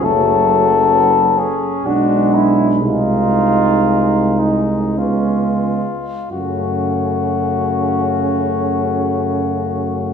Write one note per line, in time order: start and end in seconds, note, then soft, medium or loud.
0.03 1.56 F#1 soft
0.03 1.57 F#3 soft
0.03 0.96 A3 soft
0.03 1.56 C#4 soft
0.03 1.40 A4 medium
0.94 1.39 B3 soft
1.38 1.88 C#4 soft
1.38 1.87 G#4 medium
1.84 2.83 B1 soft
1.84 2.78 G#3 soft
1.84 2.83 D4 soft
1.84 2.36 D4 soft
1.84 2.52 F#4 medium
2.34 2.71 E4 soft
2.81 4.99 C2 soft
2.81 4.94 G#3 soft
2.81 4.99 D#4 soft
2.81 4.41 F4 medium
2.85 4.60 D#4 medium
4.40 5.00 D#4 soft
4.97 5.85 C#2 soft
4.97 5.84 G#3 soft
4.97 5.85 B3 soft
4.97 5.61 C#4 soft
4.97 6.31 F4 soft
6.31 10.13 F#2 soft
6.31 10.13 C#3 soft
6.31 10.13 A3 soft
6.31 10.13 C#4 soft
6.31 10.13 F#4 soft